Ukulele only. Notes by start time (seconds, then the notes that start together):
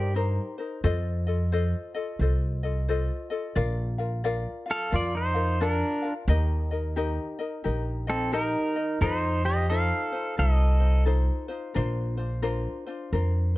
Already playing: D#4 A#4 C5
0.14 D#4 G4 A#4 C5
0.58 D#4 A#4 C5
0.84 F4 A4 C5 D#5
1.27 F4 A4 D#5
1.52 F4 A4 C5 D#5
1.94 F4 A4 D#5
2.21 F4 A4 C5 D#5
2.63 F4 A4 D#5
2.88 F4 A4 C5 D#5
3.30 F4 A4 D#5
3.55 F4 A#4 D5 F5
3.98 F4 A#4 F5
4.24 F4 A#4 D5 F5
4.66 F4 F5
4.91 F4 A#4 D5 F5
5.34 F4 A#4 F5
5.60 F4 A#4 D5 F5
6.02 F4 A#4 F5
6.28 D#4 G4 A#4 D#5
6.71 D#4 A#4 D#5
6.96 D#4 G4 A#4 D#5
7.39 D#4 A#4 D#5
7.64 D#4 G4 A#4 D#5
8.07 D#4 D#5
8.32 D#4 G4 A#4 D#5
8.76 D#4 A#4 D#5
9.01 D#4 F4 A4 C5
9.45 D#4 F4 C5
9.70 D#4 F4 A4 C5
10.12 D#4 F4 C5
10.37 D#4 F4 A4 C5
10.80 D#4 F4 C5
11.05 D#4 F4 A4 C5
11.48 D#4 F4 C5
11.74 D4 F4 A#4 C5
12.17 D4 F4 C5
12.42 D4 F4 A#4 C5
12.86 D4 F4 C5
13.13 D4 F4 A#4 C5